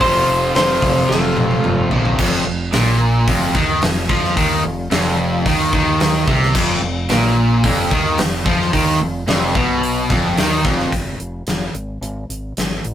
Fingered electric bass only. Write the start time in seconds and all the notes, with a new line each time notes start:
0.01 F1
0.29 F1
0.56 F1
0.82 F1
1.10 F1
1.65 F1
1.92 A#1
2.19 F1
2.47 F1
2.74 A#1
3.28 F1
3.55 D#2
3.82 F1
4.09 F2
4.37 D#2
4.65 F1
4.91 F1
5.46 D#2
5.73 D#2
6.27 C2
6.55 F1
6.81 F1
7.09 A#1
7.64 F1
7.91 D#2
8.18 F1
8.46 F2
8.74 D#2
9.01 F1
9.27 F1
9.55 B1
10.10 F1
10.37 D#2
10.65 F1
10.93 F1
11.20 F1
11.47 F1
11.74 G#1
12.01 G#1
12.29 G#1
12.57 G#1
12.85 A1